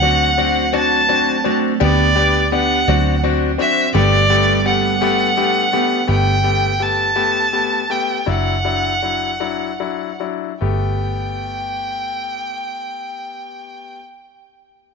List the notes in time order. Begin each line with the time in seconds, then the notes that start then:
Already playing: D2 F#3 D4 F#4 F#5
0.02 A3 C4 D4 F#4
0.38 C4 D4 F#4
0.73 C4 D4 F#4 A5
1.09 C4 D4 F#4
1.44 A3 C4 D4 F#4
1.80 D2 B3 D4 G4 D5
2.15 B3 D4 G4
2.52 B3 D4 G4 F#5
2.88 D2 F#3 C4 D4 F#4
3.23 C4 D4 F#4
3.58 C4 D4 F#4 E5
3.94 G1 G3 A3 B3 G4 A4 D5
4.30 A3 B3 G4
4.65 A3 B3 D4 G4 F#5
5.01 A3 B3 G4 A4
5.37 A3 B3 D4 G4
5.73 A3 B3 G4
6.07 G1 A3 B3 G4 G5
6.43 A3 B3 G4
6.79 A3 B3 G4 A5
7.16 A3 B3 G4
7.52 A3 B3 G4
7.89 A3 B3 G4 G5
8.26 F#1 F#3 D4 E4 F#5
8.65 F#3 D4 E4
9.02 F#3 D4 E4
9.40 F#3 D4 E4
9.80 F#3 D4 E4
10.20 F#3 D4 E4
10.61 G1 A3 B3 G4 G5